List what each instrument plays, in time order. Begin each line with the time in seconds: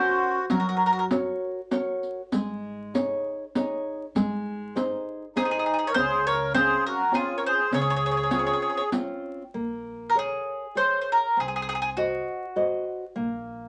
Already playing: nylon-string guitar C#4 F#4 A#4, accordion F#4, mandolin C5
0.50 upright bass F#2, nylon-string guitar F#3, accordion F#4, mandolin A#4, riq
0.60 mandolin A#4
0.69 mandolin A#4
0.77 mandolin A#4
0.86 mandolin A#4
0.93 mandolin A#4
0.99 mandolin A#4
1.11 nylon-string guitar F#4 A#4 C#5, riq
1.71 nylon-string guitar F#4 A#4 C#5, riq
2.03 riq
2.32 upright bass G#2, nylon-string guitar G#3, riq
2.94 nylon-string guitar D#4 G#4 C#5, riq
3.55 nylon-string guitar D#4 G#4 C#5, riq
4.15 upright bass G#2, nylon-string guitar G#3, riq
4.75 nylon-string guitar D#4 G#4 C5, riq
5.36 nylon-string guitar D#4 G#4 C5, accordion D#4, mandolin G#4, riq
5.45 mandolin G#4
5.51 mandolin G#4
5.59 mandolin G#4
5.66 mandolin G#4
5.74 mandolin G#4
5.79 mandolin G#4
5.87 accordion A#4, mandolin C#5
5.94 upright bass C#2, nylon-string guitar C#3, accordion G#4, mandolin C5, riq
6.27 accordion A#4, mandolin C#5
6.54 nylon-string guitar C4 C#4 F5, accordion G#4, mandolin C5, riq
6.86 accordion F#4, mandolin A#4
7.11 nylon-string guitar C4 C#4 F4, accordion F4, mandolin G#4, riq
7.37 accordion A#4, mandolin C#5
7.46 accordion G#4, mandolin C5
7.71 upright bass C#2, nylon-string guitar C#3, accordion G#4, mandolin C#5, riq
7.81 mandolin C#5
7.90 mandolin C#5
7.96 mandolin C#5
8.06 mandolin C#5
8.11 mandolin C#5
8.17 mandolin C#5
8.23 mandolin C#5
8.31 nylon-string guitar C4 C#4 F4, mandolin C#5, riq
8.39 mandolin C#5
8.47 mandolin C#5
8.53 mandolin C#5
8.62 mandolin C#5
8.70 mandolin C#5
8.77 mandolin C#5
8.92 nylon-string guitar C4 C#4 F4, riq
9.54 upright bass A#1, nylon-string guitar A#3
10.10 mandolin A#4
10.15 nylon-string guitar G#4 A#4 C#5, mandolin G#4
10.75 nylon-string guitar G#4 A#4 C#5, mandolin C5
11.01 mandolin C5
11.12 mandolin A#4
11.37 upright bass C2, nylon-string guitar C4, mandolin G#4
11.48 mandolin G#4
11.56 mandolin G#4
11.62 mandolin G#4
11.69 mandolin G#4
11.75 mandolin G#4
11.82 mandolin G#4
11.97 mandolin F#4, nylon-string guitar F#4 C5 D#5
12.56 nylon-string guitar F#4 C5 D#5
13.16 upright bass A#1, nylon-string guitar A#3